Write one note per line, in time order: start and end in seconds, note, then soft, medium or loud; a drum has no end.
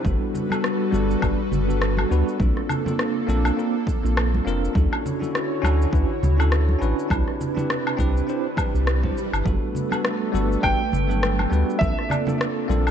0.03 0.17 G1 medium
0.03 0.46 G3 medium
0.03 2.38 G3 medium
0.03 0.46 B3 medium
0.03 0.47 D4 medium
0.03 2.38 F#4 medium
0.03 0.47 F#4 medium
0.03 2.38 A4 medium
0.03 0.47 A4 medium
0.03 2.38 B4 medium
0.03 kick loud
0.03 high conga medium
0.03 cabasa soft
0.35 low conga medium
0.35 cabasa medium
0.49 0.89 G3 medium
0.49 0.89 B3 medium
0.49 0.90 D4 medium
0.49 0.90 F#4 medium
0.49 0.90 A4 medium
0.49 high conga medium
0.49 cabasa soft
0.49 low woodblock medium
0.64 cross-stick medium
0.64 cabasa soft
0.91 1.16 G1 medium
0.91 1.18 G3 medium
0.91 1.19 B3 medium
0.91 1.19 D4 medium
0.91 1.20 F#4 medium
0.91 1.20 A4 loud
0.91 high conga medium
0.91 cabasa medium
1.11 cabasa soft
1.20 1.35 G1 medium
1.20 1.39 G3 medium
1.20 1.40 B3 medium
1.20 1.40 D4 medium
1.20 1.40 F#4 medium
1.20 1.41 B4 medium
1.20 kick medium
1.20 cabasa soft
1.20 low woodblock medium
1.51 2.05 G1 medium
1.51 high conga medium
1.51 low conga medium
1.51 cabasa medium
1.67 2.07 G3 medium
1.67 2.07 B3 medium
1.67 2.07 D4 medium
1.67 2.08 F#4 medium
1.67 2.08 A4 medium
1.67 cabasa soft
1.82 cross-stick medium
1.82 cabasa soft
1.97 high conga medium
1.97 low woodblock medium
2.09 2.23 D2 medium
2.09 2.36 G3 medium
2.09 2.37 B3 medium
2.09 2.37 D4 medium
2.09 2.37 F#4 medium
2.09 2.38 B4 loud
2.09 cabasa medium
2.28 cabasa soft
2.38 2.52 A#1 medium
2.38 2.81 A#3 medium
2.38 4.73 A#3 medium
2.38 2.82 C4 medium
2.38 2.82 D4 medium
2.38 4.73 D4 medium
2.38 2.82 F4 medium
2.38 4.73 A4 medium
2.38 2.83 A4 medium
2.38 kick loud
2.38 high conga medium
2.38 cabasa soft
2.57 cross-stick soft
2.69 low conga medium
2.69 cabasa medium
2.69 low woodblock medium
2.85 3.25 A#3 medium
2.85 3.25 C4 medium
2.85 3.25 D4 medium
2.85 3.26 F4 medium
2.85 3.26 A4 medium
2.85 high conga medium
2.85 low conga medium
2.85 cabasa soft
2.99 cross-stick medium
2.99 cabasa soft
3.27 3.51 A#1 medium
3.27 3.54 A#3 loud
3.27 3.54 C4 medium
3.27 3.54 D4 medium
3.27 3.55 F4 medium
3.27 3.55 A4 loud
3.27 high conga medium
3.27 cabasa medium
3.45 cabasa soft
3.45 low woodblock medium
3.56 3.75 A#3 medium
3.56 3.75 C4 medium
3.56 3.76 D4 medium
3.56 3.76 F4 medium
3.56 3.76 A#4 loud
3.56 cabasa soft
3.87 kick loud
3.87 high conga medium
3.87 cabasa medium
4.03 4.40 A#1 medium
4.03 4.42 A#3 medium
4.03 4.43 C4 medium
4.03 4.43 D4 medium
4.03 4.43 F4 medium
4.03 4.44 A4 medium
4.03 cabasa soft
4.17 cross-stick medium
4.17 cabasa soft
4.17 low woodblock medium
4.34 high conga medium
4.44 4.69 F1 medium
4.44 4.72 A#3 loud
4.44 4.72 C4 medium
4.44 4.72 D4 medium
4.44 4.73 F4 medium
4.44 4.73 A#4 loud
4.44 cabasa medium
4.65 cabasa soft
4.73 4.88 D2 loud
4.73 7.08 D3 medium
4.73 5.17 C#4 medium
4.73 5.17 D4 medium
4.73 9.42 E4 medium
4.73 5.17 E4 medium
4.73 7.08 F#4 medium
4.73 5.18 F#4 medium
4.73 5.18 A4 medium
4.73 7.08 C#5 medium
4.73 kick loud
4.73 high conga medium
4.73 cabasa soft
4.93 low woodblock medium
5.06 low conga medium
5.06 cabasa medium
5.19 5.59 C#4 medium
5.19 5.60 D4 medium
5.19 5.60 E4 medium
5.19 5.60 F#4 medium
5.19 5.61 A4 medium
5.19 high conga medium
5.19 cabasa soft
5.35 cross-stick medium
5.35 cabasa soft
5.62 5.86 D2 medium
5.62 5.89 C#4 medium
5.62 5.90 D4 medium
5.62 5.90 E4 medium
5.62 5.90 F#4 medium
5.62 5.91 A4 loud
5.62 high conga medium
5.62 cabasa medium
5.62 low woodblock medium
5.82 cabasa soft
5.91 6.05 D2 medium
5.91 6.10 C#4 medium
5.91 6.10 D4 medium
5.91 6.11 E4 medium
5.91 6.11 F#4 medium
5.91 6.11 B4 loud
5.91 kick medium
5.91 cabasa soft
6.22 6.76 D2 medium
6.22 high conga medium
6.22 low conga medium
6.22 cabasa medium
6.37 6.77 C#4 medium
6.37 6.77 D4 medium
6.37 6.78 E4 medium
6.37 6.78 F#4 medium
6.37 6.78 A4 medium
6.37 low woodblock medium
6.41 cabasa soft
6.52 cross-stick medium
6.52 cabasa soft
6.69 high conga medium
6.79 6.94 A1 medium
6.79 7.06 C#4 medium
6.79 7.07 D4 medium
6.79 7.07 E4 medium
6.79 7.08 F#4 medium
6.79 7.08 B4 loud
6.79 cabasa medium
6.99 cabasa soft
7.08 7.23 C2 medium
7.08 9.43 C3 medium
7.08 7.51 C4 medium
7.08 7.52 D4 medium
7.08 9.43 D4 medium
7.08 7.52 E4 medium
7.08 7.53 G4 medium
7.08 9.43 B4 medium
7.08 7.53 B4 medium
7.08 kick loud
7.08 high conga medium
7.08 cabasa soft
7.08 low woodblock medium
7.28 cross-stick soft
7.41 low conga medium
7.41 cabasa medium
7.55 7.95 C4 medium
7.55 7.95 D4 medium
7.55 7.96 E4 medium
7.55 7.96 G4 medium
7.55 7.96 B4 medium
7.55 high conga medium
7.55 low conga medium
7.55 cabasa soft
7.70 cross-stick medium
7.70 cabasa soft
7.87 low woodblock medium
7.97 8.21 C2 medium
7.97 8.24 C4 loud
7.97 8.25 D4 medium
7.97 8.25 E4 medium
7.97 8.25 G4 medium
7.97 8.26 B4 loud
7.97 kick medium
7.97 high conga medium
7.97 cabasa medium
8.17 cabasa soft
8.27 8.45 C4 medium
8.27 8.46 D4 medium
8.27 8.46 E4 medium
8.27 8.47 G4 medium
8.27 8.47 C5 medium
8.27 swell medium
8.27 cabasa soft
8.57 8.99 C4 medium
8.57 9.00 D4 medium
8.57 9.00 E4 medium
8.57 9.00 G4 medium
8.57 9.01 B4 medium
8.57 kick medium
8.57 high conga medium
8.57 cabasa medium
8.57 low woodblock medium
8.74 9.11 C2 medium
8.74 cabasa soft
8.87 cross-stick medium
8.87 cabasa soft
9.02 9.17 C4 medium
9.02 9.17 D4 medium
9.02 9.18 E4 medium
9.02 9.18 G4 medium
9.02 9.19 C5 medium
9.02 kick medium
9.02 high conga medium
9.18 cabasa medium
9.33 9.42 G1 medium
9.33 cabasa soft
9.33 low woodblock medium
9.44 9.58 G1 loud
9.44 9.87 G3 medium
9.44 11.78 A3 medium
9.44 9.87 B3 medium
9.44 11.78 D4 medium
9.44 9.88 D4 medium
9.44 9.88 F#4 medium
9.44 11.78 A4 medium
9.44 9.89 A4 medium
9.44 11.78 B4 medium
9.44 kick loud
9.44 high conga medium
9.44 cabasa soft
9.75 low conga medium
9.75 cabasa medium
9.90 10.30 G3 medium
9.90 10.30 B3 medium
9.90 10.31 D4 medium
9.90 10.31 F#4 medium
9.90 10.32 A4 medium
9.90 high conga medium
9.90 cabasa soft
9.90 low woodblock medium
10.05 cross-stick loud
10.05 cabasa soft
10.32 10.57 G1 medium
10.32 10.59 G3 medium
10.32 10.60 B3 medium
10.32 10.60 D4 medium
10.32 10.61 F#4 medium
10.32 10.61 A4 loud
10.32 high conga medium
10.32 cabasa medium
10.52 cabasa soft
10.61 10.76 G1 medium
10.61 10.80 G3 medium
10.61 10.80 B3 medium
10.61 10.81 D4 medium
10.61 10.81 F#4 medium
10.61 10.81 B4 medium
10.61 11.77 G5 loud
10.61 kick loud
10.61 low woodblock medium
10.65 cabasa soft
10.92 11.46 G1 medium
10.92 high conga medium
10.92 low conga medium
10.92 cabasa medium
11.08 11.49 F#3 medium
11.08 11.48 G3 medium
11.08 11.48 B3 medium
11.08 11.48 D4 medium
11.08 11.49 A4 medium
11.08 cabasa soft
11.23 cross-stick loud
11.23 cabasa soft
11.39 high conga medium
11.39 low woodblock medium
11.50 11.64 D2 medium
11.50 11.77 G3 medium
11.50 11.77 B3 medium
11.50 11.78 D4 medium
11.50 11.78 F#4 medium
11.50 11.79 B4 loud
11.50 cabasa medium
11.70 cabasa soft
11.79 11.93 A#1 loud
11.79 12.22 A#3 medium
11.79 12.91 A#3 medium
11.79 12.23 C4 medium
11.79 12.91 D4 medium
11.79 12.23 D4 medium
11.79 12.24 F4 medium
11.79 12.91 A4 medium
11.79 12.24 A4 medium
11.79 12.10 E5 loud
11.79 kick loud
11.79 high conga loud
11.79 cabasa soft
11.99 cross-stick soft
12.09 12.91 D5 medium
12.09 low conga medium
12.09 cabasa medium
12.09 low woodblock medium
12.26 12.66 A#3 medium
12.26 12.66 C4 medium
12.26 12.66 D4 medium
12.26 12.67 F4 medium
12.26 12.67 A4 medium
12.26 high conga medium
12.26 low conga medium
12.26 cabasa soft
12.41 cross-stick loud
12.41 cabasa soft
12.68 12.91 A#1 medium
12.68 12.91 A#3 medium
12.68 12.91 C4 medium
12.68 12.91 D4 medium
12.68 12.91 F4 medium
12.68 12.91 A4 loud
12.68 high conga medium
12.68 cabasa medium
12.87 cabasa soft
12.87 low woodblock medium